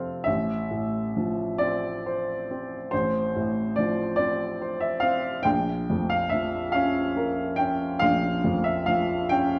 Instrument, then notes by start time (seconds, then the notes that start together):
grand piano
Already playing: F2 C3 F3 C4 A4 F5
0.24 A1 E5
0.71 A2
1.17 F3
1.58 C4 D5
2.06 C5
2.51 C4
2.91 A1 C5
3.36 A2
3.76 F3 D5
4.16 C4 D5
4.62 C5
4.80 E5
5.00 C4 F5
5.43 A#1 G5
5.90 F2
6.10 F5
6.29 F3 E5
6.72 C#4 F5
7.17 A#4
7.56 C#4 G5
7.99 A#1 F5
8.44 F2
8.64 E5
8.86 F3 F5
9.29 C#4 G5